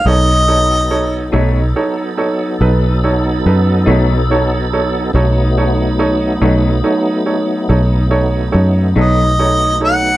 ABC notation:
X:1
M:12/8
L:1/8
Q:3/8=47
K:Bmix
V:1 name="Harmonica"
d3 z8 z | z8 z d2 f |]
V:2 name="Grand piano"
[DAc] [DAc] [DAc] [DAc] [DAc] [DAc] [DAB] [DAc] [DAB] [DAc] [DAc] [DAc] | [DAc] [DAc] [DAc] [DAc] [DAc] [DAc] [DAc] [DAc] [DAc] [DAc] [DAc] [DAc] |]
V:3 name="Tonewheel organ"
[F,B,DA]12 | [F,A,B,D]12 |]
V:4 name="Clean electric guitar" clef=bass
z3 [B,,F,A,D] z4 z [B,,F,A,D] z2 | z3 [B,,F,A,D] z4 z [B,,F,A,D] z2 |]
V:5 name="Fingered electric bass" clef=bass
B,,,3 B,,, z2 B,,,2 F,, B,,,3 | B,,,3 B,,, z2 B,,,2 F,, B,,,3 |]